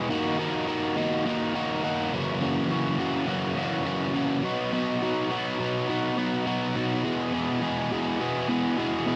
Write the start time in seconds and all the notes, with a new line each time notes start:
0.10 D#3 A#3 D#4 F#4
0.39 D#3 A#3 D#4 F#4
0.68 D#3 A#3 D#4 F#4
0.96 D#3 A#3 D#4 F#4
1.25 D#3 A#3 D#4 F#4
1.54 D#3 A#3 D#4 F#4
1.84 D#3 A#3 D#4 F#4
2.13 F#2 C#3 E3 A#3 C#4 F#4
2.41 F#2 C#3 E3 A#3 C#4 F#4
2.69 F#2 C#3 E3 A#3 C#4 F#4
2.98 F#2 C#3 E3 A#3 C#4 F#4
3.27 F#2 C#3 E3 A#3 C#4 F#4
3.57 F#2 C#3 E3 A#3 C#4 F#4
3.85 F#2 C#3 E3 A#3 C#4 F#4
4.14 F#2 C#3 E3 A#3 C#4 F#4
4.43 B2 F#3 B3 D#4 F#4
4.72 B2 F#3 B3 D#4 F#4
5.02 B2 F#3 B3 D#4 F#4
5.30 B2 F#3 B3 D#4 F#4
5.59 B2 F#3 B3 D#4 F#4
5.88 B2 F#3 B3 D#4 F#4
6.17 B2 F#3 B3 D#4 F#4
6.46 B2 F#3 B3 D#4 F#4
6.75 B2 F#3 B3 D#4 F#4
7.04 E2 B2 E3 G#3 B3 G#4
7.32 E2 B2 E3 G#3 B3 G#4
7.61 E2 B2 E3 G#3 B3 G#4
7.91 E2 B2 E3 G#3 B3 G#4
8.20 E2 B2 E3 G#3 B3 G#4
8.48 E2 B2 E3 G#3 B3 G#4
8.78 E2 B2 E3 G#3 B3 G#4
9.06 E2 B2 E3 G#3 B3 G#4